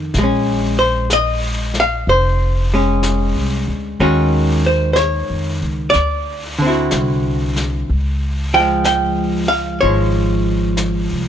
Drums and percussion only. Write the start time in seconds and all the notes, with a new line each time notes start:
0.14 brush sweep, snare
1.10 brush sweep, snare, hi-hat pedal
1.74 snare
2.06 brush sweep
3.03 brush sweep, snare, hi-hat pedal
3.99 brush sweep
4.96 brush sweep, snare, hi-hat pedal
5.93 brush sweep, snare
6.91 brush sweep, snare, hi-hat pedal
7.56 snare
7.88 brush sweep
8.84 brush sweep, snare, hi-hat pedal
9.81 brush sweep
10.77 brush sweep, snare, hi-hat pedal